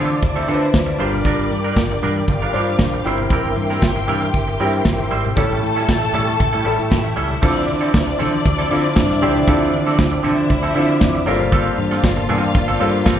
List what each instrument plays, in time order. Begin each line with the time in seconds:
Already playing: fretless electric bass D3, grand piano D3 D4 F4 C5, clean electric guitar A3, string section F4 F5, tonewheel organ C5 D5 A5 D6
0.10 muted clean electric guitar stroke, closed hi-hat, high conga
0.22 fretless electric bass D2, string section E4 E5, muted clean electric guitar stroke, kick, closed hi-hat, muted conga
0.36 clean electric guitar A3 C4 F4 A4, closed hi-hat, muted conga
0.48 grand piano D3 D4 F4 B4, fretless electric bass D3, clean electric guitar A3 C4 F4 A4, open hi-hat, high conga
0.55 grand piano C5
0.62 muted clean electric guitar stroke, closed hi-hat
0.74 fretless electric bass D2, kick, snare, muted conga, high conga
0.86 muted clean electric guitar stroke, closed hi-hat
0.98 fretless electric bass G1, grand piano G3 D4 F4 A#4, clean electric guitar G3 D4 F4 C5, string section D4 D5, tonewheel organ A#4 G5, open hi-hat
1.13 muted clean electric guitar stroke, closed hi-hat, low conga
1.25 clean electric guitar G3 D4 F4 A#4, kick, closed hi-hat
1.39 fretless electric bass G1, closed hi-hat
1.51 fretless electric bass G2, muted clean electric guitar stroke, open hi-hat, high conga
1.64 clean electric guitar G3 D4 F4 A#4, closed hi-hat
1.76 fretless electric bass G1, muted clean electric guitar stroke, kick, snare
1.90 muted clean electric guitar stroke, closed hi-hat, muted conga
2.01 fretless electric bass G2, clean electric guitar G3 D4 F4 A#4, open hi-hat, high conga, low conga
2.16 muted clean electric guitar stroke, closed hi-hat, high conga
2.28 fretless electric bass G1, string section F4 F5, muted clean electric guitar stroke, kick, closed hi-hat, muted conga
2.42 clean electric guitar G3 D4 F4 A#4, closed hi-hat
2.53 fretless electric bass G2, grand piano G3 D4 F4 C5, clean electric guitar G3 D4 F4 A#4, open hi-hat, high conga
2.67 muted clean electric guitar stroke, closed hi-hat
2.79 fretless electric bass A#1, kick, snare, high conga
2.93 muted clean electric guitar stroke, closed hi-hat, muted conga
3.04 fretless electric bass G1, clean electric guitar G3 C4 E4 C5, grand piano C4 E4 A#4, string section G4 G5, tonewheel organ E5 C6, open hi-hat
3.18 muted clean electric guitar stroke, closed hi-hat, low conga
3.30 clean electric guitar G3 C4 E4 A#4, kick, closed hi-hat
3.44 fretless electric bass G1, closed hi-hat
3.56 fretless electric bass G2, muted clean electric guitar stroke, open hi-hat, high conga
3.70 clean electric guitar G3 C4 E4 A#4, snare, closed hi-hat
3.82 fretless electric bass G1, muted clean electric guitar stroke, kick, snare
3.95 muted clean electric guitar stroke, closed hi-hat
4.08 fretless electric bass G2, clean electric guitar G3 C4 E4 A#4, open hi-hat, high conga, low conga
4.21 muted clean electric guitar stroke, closed hi-hat, high conga
4.34 fretless electric bass G1, kick, closed hi-hat
4.47 muted clean electric guitar stroke, closed hi-hat, muted conga
4.59 fretless electric bass G2, clean electric guitar G3 C4 E4 A#4, grand piano C4 E4 G4, open hi-hat, high conga
4.73 muted clean electric guitar stroke, closed hi-hat
4.85 fretless electric bass G1, kick, snare, muted conga, high conga
4.98 muted clean electric guitar stroke, closed hi-hat, muted conga
5.11 fretless electric bass G#1, clean electric guitar G3 C4 E4 C5, open hi-hat
5.25 muted clean electric guitar stroke, closed hi-hat, low conga
5.36 fretless electric bass A1, clean electric guitar G3 C#4 E4 A4, grand piano A3 E4 G4 C#5, tonewheel organ A4 C#6, string section A4 A5, kick, closed hi-hat
5.50 fretless electric bass A1, closed hi-hat, muted conga
5.62 fretless electric bass A2, muted clean electric guitar stroke, open hi-hat, high conga
5.76 clean electric guitar G3 C#4 E4 A4, snare, closed hi-hat
5.88 fretless electric bass A1, muted clean electric guitar stroke, kick, snare, muted conga
6.01 muted clean electric guitar stroke, closed hi-hat, low conga
6.14 fretless electric bass A2, clean electric guitar G3 C#4 E4 A4, open hi-hat, high conga, low conga
6.27 muted clean electric guitar stroke, closed hi-hat, high conga
6.39 fretless electric bass A1, muted clean electric guitar stroke, kick, closed hi-hat
6.53 fretless electric bass A2, clean electric guitar G3 C#4 E4 A4, closed hi-hat, muted conga
6.64 fretless electric bass A1, clean electric guitar G3 C#4 E4 A4, grand piano A3 E4 G4 A4, open hi-hat, high conga
6.78 fretless electric bass A2, muted clean electric guitar stroke, closed hi-hat
6.91 fretless electric bass A1, string section E4 E5, kick, snare, muted conga, high conga
7.04 muted clean electric guitar stroke, closed hi-hat
7.16 fretless electric bass C#2, clean electric guitar G3 C#4 E4 A4, open hi-hat
7.30 muted clean electric guitar stroke, closed hi-hat, low conga
7.42 fretless electric bass D2, grand piano D3 C4 E4 F4, clean electric guitar F3 C4 E4 A4, string section D4 D5, tonewheel organ C5 D5 E5 D6, kick, crash
7.56 closed hi-hat, muted conga
7.67 fretless electric bass D3, muted clean electric guitar stroke, open hi-hat, high conga
7.81 clean electric guitar F3 C4 E4 A4, closed hi-hat
7.93 fretless electric bass D2, muted clean electric guitar stroke, kick, snare
8.07 muted clean electric guitar stroke, closed hi-hat, muted conga
8.19 fretless electric bass D3, clean electric guitar F3 C4 E4 A4, open hi-hat, high conga, low conga
8.33 muted clean electric guitar stroke, closed hi-hat, high conga
8.45 fretless electric bass D2, muted clean electric guitar stroke, kick, closed hi-hat, muted conga
8.58 clean electric guitar F3 C4 E4 A4, closed hi-hat, muted conga
8.70 grand piano D3 C4 E4 F4, fretless electric bass D3, clean electric guitar F3 C4 E4 A4, open hi-hat, high conga
8.84 muted clean electric guitar stroke, closed hi-hat
8.96 fretless electric bass G2, kick, snare, muted conga, high conga
9.10 muted clean electric guitar stroke, closed hi-hat, muted conga
9.21 fretless electric bass C#2, grand piano D3 C4 E4 G4, clean electric guitar F3 C4 E4 C5, open hi-hat
9.35 muted clean electric guitar stroke, closed hi-hat, low conga
9.47 fretless electric bass D2, grand piano D3 C4 E4 F4, clean electric guitar F3 C4 E4 A4, kick, closed hi-hat
9.61 closed hi-hat, muted conga
9.73 fretless electric bass D3, muted clean electric guitar stroke, open hi-hat, high conga
9.86 clean electric guitar F3 C4 E4 A4, snare, closed hi-hat
9.98 fretless electric bass D2, muted clean electric guitar stroke, kick, snare
10.12 muted clean electric guitar stroke, closed hi-hat
10.23 fretless electric bass D3, clean electric guitar F3 C4 E4 A4, string section E4 E5, open hi-hat, high conga, low conga
10.37 muted clean electric guitar stroke, closed hi-hat, high conga
10.49 fretless electric bass D2, muted clean electric guitar stroke, kick, closed hi-hat
10.63 clean electric guitar F3 C4 E4 A4, closed hi-hat
10.74 grand piano D3 C4 E4 F4, fretless electric bass D3, clean electric guitar F3 C4 E4 A4, open hi-hat, high conga
10.89 muted clean electric guitar stroke, closed hi-hat
11.01 fretless electric bass F2, kick, snare, muted conga, high conga
11.14 muted clean electric guitar stroke, closed hi-hat
11.26 fretless electric bass G1, grand piano G3 F4 A4 A#4 C5, clean electric guitar A#3 C4 F4 A#4, tonewheel organ A#3 A5 C6, string section F4 F5, open hi-hat
11.40 muted clean electric guitar stroke, closed hi-hat, low conga
11.52 clean electric guitar A#3 C4 F4 A4, kick, closed hi-hat
11.66 closed hi-hat, muted conga
11.77 fretless electric bass G2, muted clean electric guitar stroke, open hi-hat, high conga
11.91 clean electric guitar A#3 C4 F4 A4, snare, closed hi-hat
12.03 fretless electric bass G1, muted clean electric guitar stroke, kick, snare
12.17 muted clean electric guitar stroke, closed hi-hat
12.29 fretless electric bass G2, clean electric guitar A#3 C4 F4 A4, open hi-hat, high conga, low conga
12.43 muted clean electric guitar stroke, closed hi-hat, high conga
12.55 fretless electric bass G1, muted clean electric guitar stroke, kick, closed hi-hat
12.68 clean electric guitar A#3 C4 F4 A4, closed hi-hat, muted conga
12.79 fretless electric bass G2, grand piano G3 F4 A4 A#4 C5, clean electric guitar A#3 C4 F4 A4, open hi-hat, high conga
12.94 muted clean electric guitar stroke, closed hi-hat
13.06 fretless electric bass G1, clean electric guitar A#3 C4 F4 A4, kick, snare, high conga